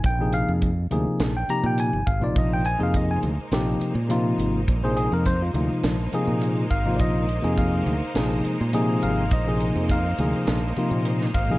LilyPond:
<<
  \new Staff \with { instrumentName = "Tine electric piano" } { \time 4/4 \key c \minor \tempo 4 = 104 g''8 f''8 r4 r16 g''16 bes''16 g''16 aes''8 f''16 d''16 | ees''16 g''16 aes''16 f''16 ees''16 aes''16 r2 r8 | r16 c''16 aes'16 bes'16 c''16 f'16 r2 f''8 | <d'' ees''>4 f''4. r4 f''8 |
ees''4 f''4. r4 f''8 | }
  \new Staff \with { instrumentName = "Tine electric piano" } { \time 4/4 \key c \minor r16 <c f bes ees' aes'>8. r8 <c f bes ees' aes'>8. r16 <c f bes ees' g'>8. r8 <c f bes ees' f'>16~ | <c f bes ees' f'>8 r16 <c f bes ees' aes'>8. r8 <c f bes ees' g'>8. r16 <c f bes ees' f'>8. r16 | r16 <c f bes ees' aes'>8. r8 <c f bes ees' f'>8. r16 <c f bes ees' aes'>8. r8 <c f bes ees' f'>16~ | <c f bes ees' f'>8 r16 <c f bes ees' aes'>8. r8 <c f bes ees' aes'>8. r16 <c f bes ees' aes'>8. r16 |
r16 <c f bes ees' aes'>8. r8 <c f bes ees' aes'>8. r16 <c f bes ees' f'>8. r8 <c f bes ees' aes'>16 | }
  \new Staff \with { instrumentName = "String section" } { \time 4/4 \key c \minor r1 | <aes bes ees' c''>1~ | <aes bes ees' c''>1~ | <aes bes ees' c''>1~ |
<aes bes ees' c''>1 | }
  \new Staff \with { instrumentName = "Fingered electric bass" } { \clef bass \time 4/4 \key c \minor bes,,8. f,8. d,16 r16 bes,,8 r16 bes,8 g,,16 aes,,16 bes,,16 | bes,,8. f,8. d,16 r16 bes,,8 r16 bes,8. aes,,8 | bes,,8. f,8. d,16 r16 bes,,8 r16 bes,8. aes,,8 | bes,,8. f,8. d,16 r16 bes,,8 r16 bes,8. aes,,8 |
bes,,8. f,8. d,16 r16 bes,,8 r16 bes,8. aes,,16 bes,,16 | }
  \new DrumStaff \with { instrumentName = "Drums" } \drummode { \time 4/4 <hh bd>8 hh8 <hh bd>8 hh8 <hh sn>8 hh8 hh8 <hh bd>8 | <hh bd>8 hh8 <hh bd>8 hh8 <hh sn>8 hh8 hh8 hh8 | <hh bd>8 hh8 <hh bd>8 hh8 <hh sn>8 hh8 hh8 <hh bd>8 | <hh bd>8 hh8 <hh bd>8 hh8 <hh sn>8 hh8 hh8 hh8 |
<hh bd>8 hh8 <hh bd>8 hh8 <hh sn>8 hh8 hh16 sn16 <hh bd>8 | }
>>